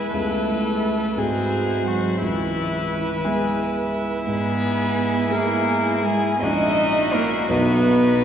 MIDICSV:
0, 0, Header, 1, 6, 480
1, 0, Start_track
1, 0, Tempo, 690449
1, 96, Time_signature, 6, 3, 24, 8
1, 3456, Tempo, 724638
1, 4896, Tempo, 692042
1, 5657, End_track
2, 0, Start_track
2, 0, Title_t, "Violin"
2, 0, Program_c, 0, 40
2, 0, Note_on_c, 0, 71, 42
2, 824, Note_on_c, 0, 72, 38
2, 835, Note_off_c, 0, 71, 0
2, 1548, Note_on_c, 0, 71, 46
2, 1558, Note_off_c, 0, 72, 0
2, 2966, Note_off_c, 0, 71, 0
2, 2970, Note_on_c, 0, 68, 56
2, 4427, Note_on_c, 0, 66, 51
2, 4437, Note_off_c, 0, 68, 0
2, 5657, Note_off_c, 0, 66, 0
2, 5657, End_track
3, 0, Start_track
3, 0, Title_t, "Violin"
3, 0, Program_c, 1, 40
3, 0, Note_on_c, 1, 68, 46
3, 92, Note_off_c, 1, 68, 0
3, 97, Note_on_c, 1, 69, 58
3, 821, Note_on_c, 1, 68, 54
3, 832, Note_off_c, 1, 69, 0
3, 1299, Note_on_c, 1, 66, 49
3, 1310, Note_off_c, 1, 68, 0
3, 1541, Note_off_c, 1, 66, 0
3, 1545, Note_on_c, 1, 64, 59
3, 2257, Note_on_c, 1, 68, 49
3, 2267, Note_off_c, 1, 64, 0
3, 2495, Note_off_c, 1, 68, 0
3, 2976, Note_on_c, 1, 71, 66
3, 3685, Note_on_c, 1, 70, 69
3, 3695, Note_off_c, 1, 71, 0
3, 4171, Note_on_c, 1, 68, 61
3, 4181, Note_off_c, 1, 70, 0
3, 4411, Note_off_c, 1, 68, 0
3, 4415, Note_on_c, 1, 75, 82
3, 4889, Note_on_c, 1, 70, 61
3, 4899, Note_off_c, 1, 75, 0
3, 5129, Note_on_c, 1, 71, 66
3, 5139, Note_off_c, 1, 70, 0
3, 5657, Note_off_c, 1, 71, 0
3, 5657, End_track
4, 0, Start_track
4, 0, Title_t, "Viola"
4, 0, Program_c, 2, 41
4, 0, Note_on_c, 2, 64, 46
4, 821, Note_on_c, 2, 66, 44
4, 831, Note_off_c, 2, 64, 0
4, 1546, Note_off_c, 2, 66, 0
4, 1550, Note_on_c, 2, 64, 50
4, 4395, Note_off_c, 2, 64, 0
4, 4418, Note_on_c, 2, 64, 56
4, 5140, Note_on_c, 2, 63, 50
4, 5150, Note_off_c, 2, 64, 0
4, 5657, Note_off_c, 2, 63, 0
4, 5657, End_track
5, 0, Start_track
5, 0, Title_t, "Grand piano"
5, 0, Program_c, 3, 0
5, 0, Control_c, 3, 64, 127
5, 0, Note_on_c, 3, 40, 39
5, 0, Note_on_c, 3, 59, 37
5, 0, Note_on_c, 3, 64, 33
5, 0, Note_on_c, 3, 68, 37
5, 70, Note_off_c, 3, 64, 0
5, 70, Note_off_c, 3, 68, 0
5, 94, Note_on_c, 3, 37, 46
5, 96, Note_off_c, 3, 59, 0
5, 96, Note_on_c, 3, 59, 29
5, 100, Note_on_c, 3, 64, 32
5, 104, Note_on_c, 3, 68, 29
5, 109, Control_c, 3, 64, 0
5, 115, Note_off_c, 3, 40, 0
5, 203, Control_c, 3, 64, 127
5, 795, Note_off_c, 3, 59, 0
5, 797, Note_off_c, 3, 64, 0
5, 799, Note_off_c, 3, 68, 0
5, 800, Note_off_c, 3, 37, 0
5, 810, Note_on_c, 3, 44, 50
5, 814, Note_on_c, 3, 60, 38
5, 816, Note_on_c, 3, 66, 34
5, 820, Note_on_c, 3, 68, 34
5, 834, Control_c, 3, 64, 0
5, 960, Control_c, 3, 64, 127
5, 1517, Note_off_c, 3, 60, 0
5, 1518, Note_off_c, 3, 66, 0
5, 1520, Note_off_c, 3, 68, 0
5, 1521, Note_off_c, 3, 44, 0
5, 1540, Note_on_c, 3, 37, 44
5, 1563, Control_c, 3, 64, 0
5, 1682, Control_c, 3, 64, 127
5, 2235, Note_off_c, 3, 37, 0
5, 2258, Note_on_c, 3, 59, 40
5, 2261, Note_on_c, 3, 64, 43
5, 2264, Note_on_c, 3, 68, 42
5, 2946, Note_off_c, 3, 59, 0
5, 2947, Note_off_c, 3, 64, 0
5, 2949, Note_off_c, 3, 68, 0
5, 2966, Note_on_c, 3, 44, 52
5, 2987, Control_c, 3, 64, 0
5, 3092, Control_c, 3, 64, 127
5, 3660, Note_off_c, 3, 44, 0
5, 3679, Note_on_c, 3, 59, 43
5, 3682, Note_on_c, 3, 64, 45
5, 3684, Note_on_c, 3, 68, 46
5, 4391, Note_off_c, 3, 59, 0
5, 4393, Note_off_c, 3, 64, 0
5, 4394, Note_off_c, 3, 68, 0
5, 4414, Note_on_c, 3, 61, 35
5, 4416, Note_on_c, 3, 34, 49
5, 4416, Note_on_c, 3, 64, 39
5, 4424, Note_on_c, 3, 66, 42
5, 4432, Control_c, 3, 64, 0
5, 4530, Control_c, 3, 64, 127
5, 5106, Note_off_c, 3, 61, 0
5, 5107, Note_off_c, 3, 64, 0
5, 5111, Note_off_c, 3, 66, 0
5, 5112, Note_off_c, 3, 34, 0
5, 5136, Note_on_c, 3, 59, 46
5, 5138, Note_on_c, 3, 35, 58
5, 5139, Note_on_c, 3, 63, 41
5, 5145, Note_on_c, 3, 66, 41
5, 5150, Control_c, 3, 64, 0
5, 5262, Control_c, 3, 64, 127
5, 5657, Note_off_c, 3, 35, 0
5, 5657, Note_off_c, 3, 59, 0
5, 5657, Note_off_c, 3, 63, 0
5, 5657, Note_off_c, 3, 66, 0
5, 5657, End_track
6, 0, Start_track
6, 0, Title_t, "Cello"
6, 0, Program_c, 4, 42
6, 0, Note_on_c, 4, 56, 50
6, 95, Note_off_c, 4, 56, 0
6, 100, Note_on_c, 4, 57, 70
6, 826, Note_on_c, 4, 56, 68
6, 837, Note_off_c, 4, 57, 0
6, 1308, Note_off_c, 4, 56, 0
6, 1312, Note_on_c, 4, 54, 63
6, 1546, Note_off_c, 4, 54, 0
6, 1561, Note_on_c, 4, 52, 70
6, 2263, Note_on_c, 4, 56, 63
6, 2273, Note_off_c, 4, 52, 0
6, 2498, Note_off_c, 4, 56, 0
6, 2974, Note_on_c, 4, 59, 82
6, 3659, Note_off_c, 4, 59, 0
6, 3679, Note_on_c, 4, 58, 79
6, 4169, Note_on_c, 4, 56, 75
6, 4179, Note_off_c, 4, 58, 0
6, 4426, Note_on_c, 4, 63, 91
6, 4436, Note_off_c, 4, 56, 0
6, 4897, Note_on_c, 4, 58, 72
6, 4907, Note_off_c, 4, 63, 0
6, 5144, Note_on_c, 4, 59, 85
6, 5154, Note_off_c, 4, 58, 0
6, 5657, Note_off_c, 4, 59, 0
6, 5657, End_track
0, 0, End_of_file